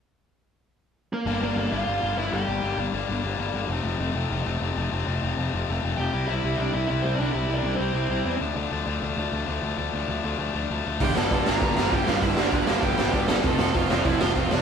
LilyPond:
<<
  \new Staff \with { instrumentName = "Lead electric guitar" } { \time 4/4 \key g \dorian \tempo 4 = 197 r2. r8 <bes bes'>8~ | <bes bes'>8 <bes bes'>8 <bes bes'>8 <f' f''>4. <e' e''>8 <g' g''>8~ | <g' g''>4 r2. | r1 |
r2. r8 <g' g''>8~ | <g' g''>8 <e' e''>4 <d' d''>8 <e' e''>8 <e' e''>8 <c' c''>8 <d' d''>8 | <e' e''>8. <d' d''>8. <c' c''>2 r8 | r1 |
r1 | <g' g''>8 <a' a''>4 <bes' bes''>4. <g' g''>8 <f' f''>8 | <e' e''>8 <d' d''>4 <f' f''>8 <g' g''>4. <a' a''>8~ | <a' a''>8 <a' a''>8 <f' f''>8 <f' f''>8 <e' e''>8 <f' f''>4 <d' d''>8 | }
  \new Staff \with { instrumentName = "Distorted electric guitar" } { \clef bass \time 4/4 \key g \dorian r1 | <g, d g bes d'>8 <g, d g bes d'>8 <g, d g bes d'>8 <g, d g bes d'>8 <g, d g bes d'>8 <g, d g bes d'>8 <g, d g bes d'>8 <g, d g bes d'>8 | <g, d g bes d'>8 <g, d g bes d'>8 <g, d g bes d'>8 <g, d g bes d'>8 <g, d g bes d'>8 <g, d g bes d'>8 <g, d g bes d'>8 <g, d g bes d'>8 | <f, c f a c'>8 <f, c f a c'>8 <f, c f a c'>8 <f, c f a c'>8 <f, c f a c'>8 <f, c f a c'>8 <f, c f a c'>8 <f, c f a c'>8 |
<f, c f a c'>8 <f, c f a c'>8 <f, c f a c'>8 <f, c f a c'>8 <f, c f a c'>8 <f, c f a c'>8 <f, c f a c'>8 <f, c f a c'>8 | <c g c' e'>8 <c g c' e'>8 <c g c' e'>8 <c g c' e'>8 <c g c' e'>8 <c g c' e'>8 <c g c' e'>8 <c g c' e'>8 | <c g c' e'>8 <c g c' e'>8 <c g c' e'>8 <c g c' e'>8 <c g c' e'>8 <c g c' e'>8 <c g c' e'>8 <d f a d'>8 | <d f a d'>8 <d f a d'>8 <d f a d'>8 <d f a d'>8 <d f a d'>8 <d f a d'>8 <d f a d'>8 <d f a d'>8 |
<d f a d'>8 <d f a d'>8 <d f a d'>8 <d f a d'>8 <d f a d'>8 <d f a d'>8 <d f a d'>8 <d f a d'>8 | <g, d g bes d'>8 <g, d g bes d'>8 <g, d g bes d'>8 <g, d g bes d'>8 <g, d g bes d'>8 <g, d g bes d'>8 <g, d g bes d'>8 <g, d g bes d'>8 | <g, d g bes d'>8 <g, d g bes d'>8 <g, d g bes d'>8 <g, d g bes d'>8 <g, d g bes d'>8 <g, d g bes d'>8 <g, d g bes d'>8 <g, d g bes d'>8 | <f a c' f'>8 <f a c' f'>8 <f a c' f'>8 <f a c' f'>8 <f a c' f'>8 <f a c' f'>8 <f a c' f'>8 <f a c' f'>8 | }
  \new Staff \with { instrumentName = "Overdriven electric guitar" } { \clef bass \time 4/4 \key g \dorian r1 | r1 | r1 | r1 |
r1 | r1 | r1 | r1 |
r1 | <g, d g>8 <g, d g>8 <g, d g>8 <g, d g>8 <g, d g>8 <g, d g>8 <g, d g>8 <g, d g>8 | <g, d g>8 <g, d g>8 <g, d g>8 <g, d g>8 <g, d g>8 <g, d g>8 <g, d g>8 <g, d g>8 | <f, c f>8 <f, c f>8 <f, c f>8 <f, c f>8 <f, c f>8 <f, c f>8 <f, c f>8 <f, c f>8 | }
  \new Staff \with { instrumentName = "Picked electric bass" } { \clef bass \time 4/4 \key g \dorian r1 | g,,8 g,,8 g,,8 g,,8 g,,8 g,,8 g,,8 g,,8 | g,,8 g,,8 g,,8 g,,8 g,,8 g,,8 g,,8 g,,8 | f,,8 f,,8 f,,8 f,,8 f,,8 f,,8 f,,8 f,,8 |
f,,8 f,,8 f,,8 f,,8 f,,8 f,,8 f,,8 f,,8 | c,8 c,8 c,8 c,8 c,8 c,8 c,8 c,8 | c,8 c,8 c,8 c,8 c,8 c,8 e,8 d,8 | d,8 d,8 d,8 d,8 d,8 d,8 d,8 d,8 |
d,8 d,8 d,8 d,8 d,8 d,8 d,8 d,8 | g,,8 g,,8 g,,8 g,,8 g,,8 g,,8 g,,8 g,,8 | g,,8 g,,8 g,,8 g,,8 g,,8 g,,8 g,,8 g,,8 | f,,8 f,,8 f,,8 f,,8 f,,8 f,,8 f,,8 f,,8 | }
  \new DrumStaff \with { instrumentName = "Drums" } \drummode { \time 4/4 r4 r4 r4 r4 | r4 r4 r4 r4 | r4 r4 r4 r4 | r4 r4 r4 r4 |
r4 r4 r4 r4 | r4 r4 r4 r4 | r4 r4 r4 r4 | r4 r4 r4 r4 |
r4 r4 r4 r4 | <hho bd>8 sn8 <hho bd>8 sn8 <hho bd>8 sn8 <hho bd>8 sn8 | <hho bd>8 sn8 <hho bd>8 sn8 <hho bd>8 sn8 <hho bd>8 sn8 | <hho bd>8 sn8 <hho bd>8 sn8 <hho bd>8 sn8 <hho bd>8 sn8 | }
>>